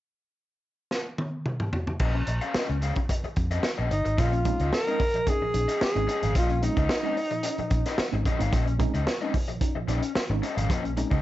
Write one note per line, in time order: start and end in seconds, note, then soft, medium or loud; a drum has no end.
0.91 snare medium
1.18 high tom medium
1.46 mid tom medium
1.60 mid tom medium
1.73 floor tom medium
1.87 floor tom medium
2.00 2.21 A#1 loud
2.00 2.18 C#4 medium
2.00 2.14 G#4 medium
2.00 2.14 C5 medium
2.00 2.13 D#5 medium
2.00 kick loud
2.00 crash medium
2.15 muted overdriven electric guitar stroke soft
2.27 2.39 A#1 medium
2.27 muted overdriven electric guitar stroke soft
2.27 closed hi-hat medium
2.41 2.54 C#4 soft
2.41 2.54 G#4 soft
2.41 2.55 C5 soft
2.41 2.55 F5 medium
2.41 closed hi-hat soft
2.54 2.73 C#4 medium
2.54 2.69 G#4 medium
2.54 2.69 C5 medium
2.54 2.68 D#5 medium
2.54 muted fingered electric bass stroke soft
2.54 snare loud
2.69 2.91 C#2 medium
2.69 muted overdriven electric guitar stroke soft
2.82 2.96 C#4 soft
2.82 2.96 G#4 medium
2.82 2.96 C5 medium
2.82 2.96 F5 medium
2.82 closed hi-hat medium
2.96 muted overdriven electric guitar stroke soft
2.96 kick medium
2.96 closed hi-hat soft
3.09 muted overdriven electric guitar stroke soft
3.09 kick loud
3.09 closed hi-hat loud
3.24 muted fingered electric bass stroke soft
3.24 muted overdriven electric guitar stroke soft
3.24 closed hi-hat soft
3.36 3.58 F2 medium
3.36 kick medium
3.36 closed hi-hat medium
3.51 3.63 C#4 medium
3.51 3.63 G#4 medium
3.51 3.64 C5 medium
3.51 3.64 D#5 medium
3.51 closed hi-hat medium
3.63 muted overdriven electric guitar stroke soft
3.63 snare loud
3.78 3.88 A#1 medium
3.78 3.90 C#4 medium
3.78 3.90 G#4 medium
3.78 3.90 C5 medium
3.78 3.91 D#5 medium
3.91 4.02 G1 medium
3.91 4.20 D#4 medium
3.91 muted overdriven electric guitar stroke soft
3.91 closed hi-hat medium
4.05 4.16 G#1 medium
4.05 muted overdriven electric guitar stroke soft
4.05 closed hi-hat medium
4.18 4.51 A#1 loud
4.18 4.33 A#2 medium
4.18 4.33 F3 medium
4.18 4.36 C#4 medium
4.18 4.73 F4 medium
4.18 4.32 G#4 loud
4.18 4.32 C5 medium
4.18 4.31 D#5 loud
4.18 kick loud
4.18 closed hi-hat loud
4.33 muted overdriven electric guitar stroke soft
4.33 closed hi-hat soft
4.45 4.60 G#3 medium
4.45 4.60 C4 medium
4.45 4.59 C#4 medium
4.45 4.59 D#4 loud
4.45 muted overdriven electric guitar stroke soft
4.45 kick medium
4.45 closed hi-hat medium
4.60 4.70 C#2 medium
4.60 4.65 C#4 soft
4.60 4.71 C#4 soft
4.60 4.65 D#4 soft
4.60 4.72 G#4 soft
4.60 4.72 C5 medium
4.60 4.72 D#5 medium
4.60 closed hi-hat soft
4.72 5.30 A#4 medium
4.72 muted overdriven electric guitar stroke soft
4.72 snare loud
4.87 5.00 G#3 medium
4.87 5.00 C4 medium
4.87 5.00 C#4 medium
4.87 5.00 D#4 medium
4.87 5.00 G#4 medium
4.87 5.00 C5 medium
4.87 5.01 D#5 medium
4.87 closed hi-hat soft
5.00 muted overdriven electric guitar stroke soft
5.00 kick medium
5.00 open hi-hat medium
5.14 5.27 A#2 medium
5.14 5.27 F3 medium
5.14 muted overdriven electric guitar stroke soft
5.14 closed hi-hat medium
5.27 5.42 C#4 medium
5.27 5.42 D#4 medium
5.27 5.82 G#4 loud
5.27 muted overdriven electric guitar stroke soft
5.27 kick medium
5.27 closed hi-hat medium
5.41 5.54 A#2 medium
5.41 5.55 F3 medium
5.41 muted fingered electric bass stroke soft
5.41 muted overdriven electric guitar stroke soft
5.54 5.65 A#1 medium
5.54 5.69 C#4 medium
5.54 5.69 D#4 medium
5.54 closed hi-hat medium
5.68 5.81 C#4 medium
5.68 5.81 G#4 medium
5.68 5.81 C5 medium
5.68 5.81 D#5 medium
5.68 closed hi-hat medium
5.81 6.33 G#4 medium
5.81 muted fingered electric bass stroke soft
5.81 muted overdriven electric guitar stroke soft
5.81 snare loud
5.95 6.06 G#1 medium
5.95 6.09 G#3 medium
5.95 6.09 C4 medium
5.95 6.09 C#4 medium
5.95 6.09 D#4 medium
5.95 muted overdriven electric guitar stroke medium
5.95 closed hi-hat soft
6.07 6.22 C#4 medium
6.07 6.22 G#4 medium
6.07 6.22 C5 medium
6.07 6.22 D#5 medium
6.07 closed hi-hat medium
6.22 6.33 G#1 medium
6.22 6.34 A#2 medium
6.22 6.34 F3 medium
6.22 6.34 C#4 medium
6.22 6.35 G#4 medium
6.22 6.35 C5 medium
6.22 6.36 F5 medium
6.22 closed hi-hat medium
6.35 6.68 A#1 loud
6.35 6.50 A#2 medium
6.35 6.50 F3 medium
6.35 6.53 C#4 medium
6.35 6.62 F4 medium
6.35 6.50 G#4 loud
6.35 6.49 C5 loud
6.35 6.50 D#5 loud
6.35 kick loud
6.35 closed hi-hat loud
6.50 muted overdriven electric guitar stroke soft
6.50 closed hi-hat soft
6.62 6.77 G#3 medium
6.62 6.77 C4 medium
6.62 6.75 C#4 medium
6.62 6.75 D#4 medium
6.62 8.22 D#4 medium
6.62 muted overdriven electric guitar stroke soft
6.62 closed hi-hat medium
6.76 6.87 C#2 loud
6.76 6.81 C#4 soft
6.76 6.89 C#4 soft
6.76 6.81 D#4 soft
6.76 6.90 G#4 medium
6.76 6.90 C5 medium
6.76 6.90 D#5 medium
6.76 kick medium
6.76 closed hi-hat soft
6.89 muted overdriven electric guitar stroke soft
6.89 snare loud
7.03 7.17 G#3 medium
7.03 7.17 C4 medium
7.03 7.17 C#4 medium
7.03 7.16 C#4 medium
7.03 7.17 D#4 medium
7.03 7.16 G#4 medium
7.03 7.16 C5 medium
7.03 7.17 D#5 medium
7.17 muted overdriven electric guitar stroke soft
7.17 open hi-hat medium
7.31 7.44 A#2 medium
7.31 7.44 F3 medium
7.31 muted overdriven electric guitar stroke soft
7.31 closed hi-hat medium
7.43 7.58 C#4 medium
7.43 7.59 D#4 medium
7.43 muted overdriven electric guitar stroke medium
7.43 closed hi-hat loud
7.58 7.71 A#2 medium
7.58 7.71 F3 medium
7.58 muted fingered electric bass stroke soft
7.58 muted overdriven electric guitar stroke soft
7.58 closed hi-hat soft
7.70 7.82 A#1 medium
7.70 7.86 C#4 medium
7.70 7.86 D#4 medium
7.70 kick medium
7.70 closed hi-hat medium
7.86 7.98 C#4 medium
7.86 7.98 G#4 medium
7.86 7.99 C5 medium
7.86 7.99 D#5 medium
7.86 snare soft
7.86 closed hi-hat medium
7.98 muted fingered electric bass stroke soft
7.98 muted overdriven electric guitar stroke soft
7.98 snare loud
8.12 8.23 G#1 medium
8.12 8.26 G#3 medium
8.12 8.26 C4 medium
8.12 8.26 C#4 medium
8.12 8.26 D#4 medium
8.12 muted overdriven electric guitar stroke soft
8.24 8.40 A#2 medium
8.24 8.40 F3 medium
8.24 8.40 C#4 medium
8.24 8.40 G#4 medium
8.24 8.40 C5 medium
8.24 8.41 D#5 medium
8.24 kick medium
8.24 closed hi-hat medium
8.39 8.50 G#1 medium
8.39 8.53 G#3 medium
8.39 8.53 C4 medium
8.39 8.53 C#4 medium
8.39 8.51 C#4 medium
8.39 8.53 D#4 medium
8.39 8.51 G#4 medium
8.39 8.52 C5 medium
8.39 8.53 F5 medium
8.39 closed hi-hat medium
8.52 8.85 A#1 loud
8.52 8.67 A#2 medium
8.52 8.67 F3 medium
8.52 8.70 C#4 medium
8.52 8.66 G#4 medium
8.52 8.66 C5 medium
8.52 8.66 D#5 medium
8.52 kick loud
8.52 closed hi-hat loud
8.67 muted overdriven electric guitar stroke soft
8.67 closed hi-hat soft
8.79 8.94 G#3 loud
8.79 8.94 C4 medium
8.79 8.92 C#4 medium
8.79 8.92 D#4 loud
8.79 muted overdriven electric guitar stroke soft
8.79 kick loud
8.79 closed hi-hat medium
8.93 9.04 C#2 medium
8.93 8.99 C#4 soft
8.93 9.05 C#4 soft
8.93 8.99 D#4 soft
8.93 9.05 G#4 medium
8.93 9.06 C5 medium
8.93 9.06 D#5 medium
8.93 closed hi-hat soft
9.06 muted overdriven electric guitar stroke soft
9.06 snare loud
9.21 9.34 G#3 medium
9.21 9.34 C4 medium
9.21 9.34 C#4 medium
9.21 9.32 C#4 medium
9.21 9.35 D#4 medium
9.21 9.33 G#4 medium
9.21 9.33 C5 medium
9.21 9.33 D#5 loud
9.33 muted overdriven electric guitar stroke soft
9.33 kick loud
9.33 open hi-hat medium
9.48 9.61 A#2 medium
9.48 9.61 F3 medium
9.48 muted overdriven electric guitar stroke soft
9.48 closed hi-hat medium
9.61 9.76 C#4 medium
9.61 9.76 D#4 medium
9.61 kick loud
9.61 closed hi-hat medium
9.75 9.89 A#2 medium
9.75 9.89 F3 medium
9.75 muted fingered electric bass stroke soft
9.75 muted overdriven electric guitar stroke soft
9.88 9.99 A#1 loud
9.88 10.03 C#4 medium
9.88 10.08 C#4 medium
9.88 10.03 D#4 medium
9.88 10.02 G#4 medium
9.88 10.01 C5 medium
9.88 10.01 D#5 medium
9.88 closed hi-hat medium
10.02 muted overdriven electric guitar stroke soft
10.02 closed hi-hat medium
10.15 muted overdriven electric guitar stroke soft
10.15 muted fingered electric bass stroke soft
10.15 snare loud
10.30 10.40 G#1 loud
10.30 10.43 G#3 medium
10.30 10.43 C4 medium
10.30 10.43 C#4 medium
10.30 10.44 D#4 medium
10.30 muted overdriven electric guitar stroke soft
10.42 10.57 C#4 medium
10.42 10.56 G#4 medium
10.42 10.56 C5 medium
10.42 10.56 D#5 medium
10.42 closed hi-hat medium
10.57 10.70 G#1 medium
10.57 10.69 A#2 medium
10.57 10.68 F3 medium
10.57 10.68 C#4 medium
10.57 10.69 G#4 medium
10.57 10.69 C5 medium
10.57 10.70 F5 medium
10.57 closed hi-hat medium
10.69 11.03 A#1 loud
10.69 10.85 A#2 medium
10.69 10.85 F3 medium
10.69 10.88 C#4 medium
10.69 10.84 G#4 medium
10.69 10.84 C5 loud
10.69 10.83 D#5 loud
10.69 kick loud
10.69 closed hi-hat loud
10.84 muted overdriven electric guitar stroke soft
10.84 closed hi-hat soft
10.97 11.12 G#3 medium
10.97 11.12 C4 medium
10.97 11.09 C#4 medium
10.97 11.10 D#4 loud
10.97 muted overdriven electric guitar stroke soft
10.97 closed hi-hat medium
11.11 11.21 C#2 loud
11.11 11.16 C#4 soft
11.11 11.22 C#4 soft
11.11 11.16 D#4 soft
11.11 11.22 G#4 medium
11.11 11.22 C5 medium
11.11 11.22 D#5 medium
11.11 kick medium
11.11 closed hi-hat soft